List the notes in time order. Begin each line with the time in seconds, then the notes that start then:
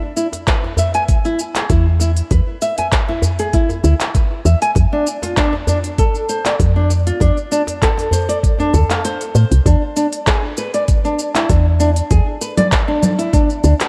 0.17 E4, shaker
0.33 open hi-hat, djembe slap, shaker
0.47 B4, kick, clap, open hi-hat, shaker
0.64 djembe slap
0.77 E5, djembe slap, djembe bass, shaker
0.94 G#5, open hi-hat, shaker
1.08 kick, open hi-hat, shaker
1.25 E4, shaker
1.39 shaker
1.55 G#4, clap, open hi-hat, shaker
1.70 E2 E4, kick, open hi-hat, shaker
2.00 E4, djembe slap, shaker
2.17 open hi-hat, shaker
2.31 E2 B4, kick, open hi-hat, djembe slap, shaker
2.62 E5, shaker
2.78 G#5, open hi-hat, djembe slap, shaker
2.92 kick, clap, open hi-hat, shaker
3.09 E4, djembe slap
3.22 djembe slap, djembe bass, shaker
3.39 G#4, open hi-hat, shaker
3.53 E4, kick, open hi-hat, shaker
3.69 djembe tone, shaker
3.83 D2 E4, djembe tone, shaker
4.00 clap, open hi-hat, shaker
4.15 B4, kick, open hi-hat, shaker
4.45 E2 E5, shaker
4.62 G#5, open hi-hat, shaker
4.75 F2, kick, open hi-hat, djembe slap, shaker
4.93 D4
5.07 shaker
5.22 F4, open hi-hat, djembe slap, shaker
5.37 D4, kick, clap, open hi-hat, shaker
5.53 djembe slap
5.67 D4, djembe slap, djembe bass, shaker
5.84 open hi-hat, shaker
5.98 A4, kick, open hi-hat, shaker
6.15 shaker
6.29 C5, shaker
6.45 D5, clap, open hi-hat, shaker
6.60 F2, kick, open hi-hat, shaker
6.76 D4
6.90 djembe slap, shaker
7.07 F4, open hi-hat, shaker
7.20 F2 D4, kick, open hi-hat, djembe slap, shaker
7.37 shaker
7.52 D4, shaker
7.67 open hi-hat, djembe slap, shaker
7.82 A4, kick, clap, open hi-hat, shaker
7.98 open hi-hat, djembe slap, shaker
8.11 C5, djembe slap, djembe bass, shaker
8.29 D5, open hi-hat, shaker
8.43 kick, open hi-hat, shaker
8.59 D4, djembe tone, shaker
8.73 D2 A4, djembe tone, djembe bass, shaker
8.90 F5, clap, open hi-hat, djembe tone, shaker
9.05 C5, open hi-hat, shaker
9.21 open hi-hat, shaker
9.35 A2 C5, shaker
9.51 C2, open hi-hat, shaker
9.66 E2 D4, kick, open hi-hat, shaker
9.96 D4, shaker
10.13 open hi-hat, shaker
10.27 G#4, kick, clap, open hi-hat, shaker
10.57 B4, shaker
10.74 D5, open hi-hat, shaker
10.88 kick, open hi-hat, shaker
11.05 D4, shaker
11.19 shaker
11.35 E4, clap, open hi-hat, shaker
11.49 E2 D4, kick, open hi-hat, shaker
11.80 D4, shaker
11.96 open hi-hat, shaker
12.11 E2 G#4, kick, open hi-hat, shaker
12.41 B4, shaker
12.57 D5, open hi-hat, low conga, shaker
12.72 kick, clap, open hi-hat, shaker
12.88 D4
13.03 low conga, shaker
13.19 E4, open hi-hat, shaker
13.33 D4, kick, open hi-hat, shaker
13.50 shaker
13.64 D2 D4, shaker
13.80 clap, open hi-hat, shaker